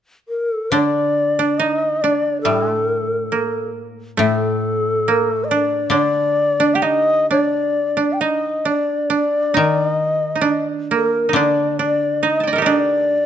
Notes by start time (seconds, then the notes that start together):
0.28 A#4
0.52 A4
0.71 D3 D4 D5
1.39 D4
1.58 D#4 D#5
2.02 D4 D5
2.41 A2 G3 A4
2.70 A3
3.32 A#3
4.17 A2 A3 A4
5.08 A#3
5.32 A3
5.44 D#5
5.49 D4 D5
5.90 D3 D4 D5
6.60 D4
6.75 G4 G5
6.82 D#4 D#5
7.31 D4 D5
7.97 D4
8.13 G5
8.21 D#4 D#5
8.65 D4
8.69 D5
9.10 D4
9.15 D5
9.54 D#3 D#4
9.62 D5
9.87 D#5
10.35 D#4
10.41 D4
10.91 A#3
10.96 A#4
11.29 D#4
11.33 D3 D4
11.38 D5
11.79 D4 D5
12.23 D#4 D#5
12.40 G5 A5
12.47 D5 D#5
12.53 A4 A#4
12.58 D#4 G4
12.64 D4 D5